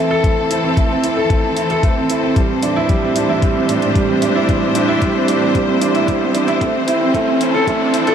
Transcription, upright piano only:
Already playing: A3 C4 E4 A4
0.11 A4
0.24 A3
0.37 C4
0.51 E4
0.64 C4
0.77 A3
0.91 C4
1.04 E4
1.17 A4
1.30 A3
1.44 C4
1.57 E4
1.70 A4
1.83 A3
1.97 C4
2.10 E4
2.23 C4
2.36 G3
2.50 C4
2.63 D4
2.76 E4
2.90 G3
3.03 C4
3.16 D4
3.29 E4
3.42 G3
3.56 C4
3.69 D4
3.82 C4
3.95 G3
4.09 C4
4.22 D4
4.35 E4
4.49 G3
4.62 C4
4.75 D4
4.88 E4
5.02 G3
5.15 C4
5.28 D4
5.42 C4
5.55 G3
5.68 C4
5.81 D4
5.95 E4
6.08 G3
6.21 C4
6.35 D4
6.48 E4
6.61 A3
6.75 C4
6.88 E4
7.01 C4
7.15 A3
7.28 C4
7.41 E4
7.54 A4
7.68 A3
7.81 C4
7.94 E4
8.07 A4

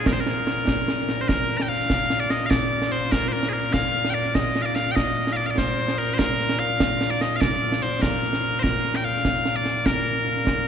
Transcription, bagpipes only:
Already playing: A#2
0.07 A#4
0.13 C5
0.21 A#4
1.21 C5
1.28 A#4
1.57 A#5
1.62 G5
1.69 F5
2.20 D5
2.30 D#5
2.46 D5 F5
2.92 C5
3.12 A#4
3.28 C5
3.33 A#4
3.49 G#4 A#4
3.73 F5
4.10 G5
4.14 D5
4.35 D#5
4.62 D5 F5
4.75 F5
4.92 G5
4.96 D#5
5.33 D5 F5
5.46 F5
5.51 D5
5.58 C5
5.98 A#4
6.14 C5
6.19 A#4
6.59 F5
7.10 D5
7.21 D#5
7.36 F5
7.41 D5
7.82 C5
8.02 A#4
8.60 A#4 C5
8.96 G5
9.05 F5
9.56 D5
9.86 A#4

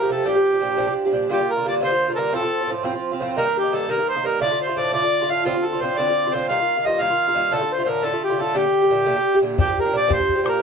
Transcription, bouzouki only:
0.02 F3 A3 G4
0.10 C3 F3 A3 G4
0.25 A#2 F3 D4 G4
0.35 F3 D4 G4
0.52 F3 D4 G4
0.60 A#2 F3 D4 G4
0.77 A#2 F3 D4 G4
0.87 F3 D4 G4
1.05 F3 D4 G4
1.12 A#2 F3 D4 G4
1.29 G2 D3 A#3 F4
1.39 D3 A#3 F4
1.57 D3 A#3 F4
1.65 G2 D3 A#3 F4
1.81 G2 D3 A#3 F4
1.91 D3 A#3 F4
2.08 D3 A#3 F4
2.17 G2 D3 A#3 F4
2.32 A2 F3 C4 F4
2.42 F3 C4 F4
2.61 F3 C4 F4
2.68 A2 F3 C4 F4
2.83 A2 F3 C4 F4
2.92 F3 C4 F4
3.12 F3 C4 F4
3.20 A2 F3 C4 F4
3.37 G2 D#3 A#3 D#4
3.45 D#3 A#3 D#4
3.64 D#3 A#3 D#4
3.72 G2 D#3 A#3 D#4
3.89 G2 D#3 A#3 D#4
3.97 D#3 A#3 D#4
4.16 D#3 A#3 D#4
4.23 G2 D#3 A#3 D#4
4.40 A2 D3 A3 F4
4.51 D3 A3 F4
4.67 D3 A3 F4
4.77 A2 D3 A3 F4
4.92 A2 D3 A3 F4
5.02 D3 A3 F4
5.21 D3 A3 F4
5.29 A2 D3 A3 F4
5.45 A2 D3 C4 F4
5.54 D3 C4 F4
5.73 D3 C4 F4
5.82 A2 D3 C4 F4
5.97 A2 D3 C4 F4
6.08 D3 C4 F4
6.26 D3 C4 F4
6.33 A2 D3 C4 F4
6.49 G2 D#3 A#3 F4
6.60 D#3 A#3 F4
6.76 D#3 A#3 F4
6.85 G2 D#3 A#3 F4
7.00 G2 D#3 A#3 F4
7.10 D#3 A#3 F4
7.28 D#3 A#3 F4
7.34 G2 D#3 A#3 F4
7.51 A2 D3 A3 F4
7.61 D3 A3 F4
7.78 D3 A3 F4
7.86 A2 D3 A3 F4
8.02 A2 D3 A3 F4
8.12 D3 A3 F4
8.30 D3 A3 F4
8.38 A2 D3 A3 F4
8.54 A#2 D3 A3 G4
8.64 D3 A3 G4
8.82 D3 A3 G4
8.90 A#2 D3 A3 G4
9.06 A#2 D3 A3 G4
9.18 D3 A3
9.34 D3 A3 G4
9.42 A#2 D3 A3 G4
9.58 A#2 F3 D4 G4
9.67 F3 D4 G4
9.85 F3 D4 G4
9.92 A#2 F3 D4 G4
10.08 A#2 F3 D4 G4
10.17 F3 D4 G4
10.35 F3 D4 G4
10.43 A#2 F3 D4 G4

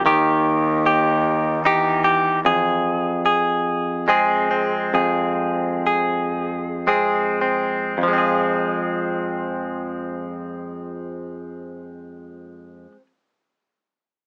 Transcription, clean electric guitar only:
0.06 D#3 G4
0.86 G4
1.65 D#4 G4
2.05 G4
2.45 F2 G#4
3.26 G#4
4.08 G#3 C4 G#4
4.51 C4
4.94 F2 G#4
5.87 G#4
6.87 G#3 C4 G#4
7.41 C4
7.98 F2
8.03 F3
8.08 G#3
8.13 C4
8.18 G#4

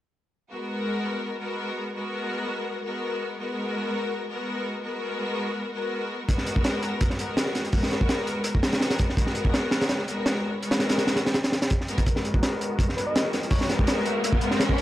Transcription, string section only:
0.51 G#3 B3 F#4 A#4
1.40 G#3 B3 F#4 A#4
1.95 G#3 B3 F#4 A#4
2.85 G#3 B3 F#4 A#4
3.39 G#3 B3 F#4 A#4
4.29 G#3 B3 F#4 A#4
4.83 G#3 B3 F#4 A#4
5.74 G#3 B3 F#4 A#4
6.28 G#3 B3 F#4 A#4
7.19 G#3 B3 F#4 A#4
7.73 G#3 B3 F#4 A#4
8.63 G#3 B3 F#4 A#4
9.18 G#3 B3 F#4 A#4
10.08 G#3 B3 F#4 A#4
10.63 G#3 B3 F#4 A#4
11.89 G#3 B3 F#4 A#4
12.07 G#3 B3 F#4 A#4
12.97 G#3 B3 F#4 A#4
13.52 G#3 B3 F#4 A#4
14.42 G#3 B3 F#4 A#4

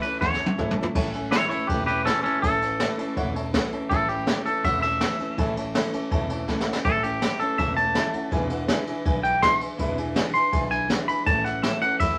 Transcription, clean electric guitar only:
0.02 B4
0.21 C#5
1.31 E4 C#5
1.49 E4 C#5
1.67 G4 B4
1.86 G4 B4
2.05 C#4 A4
2.23 C#4 A4
2.42 A4
3.89 A4
4.08 G4
4.46 A4
4.65 E5
4.82 E5
6.85 A4
7.03 G4
7.39 A4
7.58 E5
7.77 A5
9.23 G5
9.42 C6
10.34 C6
10.71 G#5
11.08 B5
11.26 A5
11.44 F#5
11.62 E5
11.82 F#5
12.00 E5

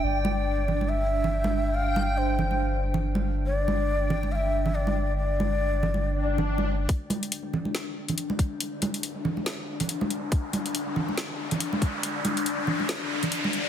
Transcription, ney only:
0.04 D5
0.89 E5
1.74 F5
2.17 C5
3.46 D5
4.32 E5 F5
4.75 D5
5.17 D5

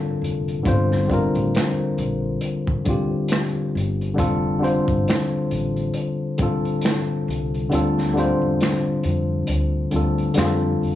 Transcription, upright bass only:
0.22 F1
0.66 G1
1.36 A1
1.98 A#1
3.75 G1
4.19 F1
4.89 G1
5.52 A1
7.28 C2
7.72 D2
8.42 E2
9.04 F2
9.49 D2
9.93 D2
10.37 F2
10.82 F1

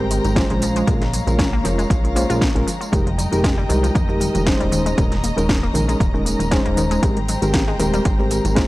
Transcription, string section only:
Already playing: G#3 C5 G5 A#5
0.62 C#5 F5
2.92 D#5 G5 A#5
4.72 C#4
7.02 G#3 C5 G5

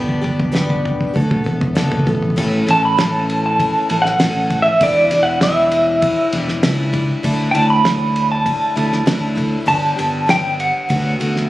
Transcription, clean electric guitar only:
2.71 A5
2.85 B5
3.01 A5
3.46 A5
4.02 F#5
4.62 E5
4.83 D5
5.23 F#5
5.43 E5
7.51 G5 A5
7.70 B5
8.32 A5
9.68 A5
10.30 G5
10.60 F#5

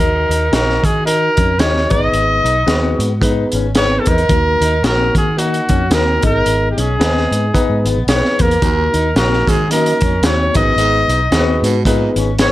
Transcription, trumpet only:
Already playing: A#4
0.55 A#4
0.85 G#4
1.06 A#4
1.59 C#5
1.90 D#5
3.77 C#5
3.99 A4
4.08 A#4
4.85 A#4
5.18 G#4
5.38 F#4
5.93 A#4
6.26 A#4
6.71 G4
6.80 G#4
8.09 C#5
8.41 A#4
9.18 A#4
9.49 G#4
9.72 A#4
10.25 C#5
10.56 D#5
12.41 C#5

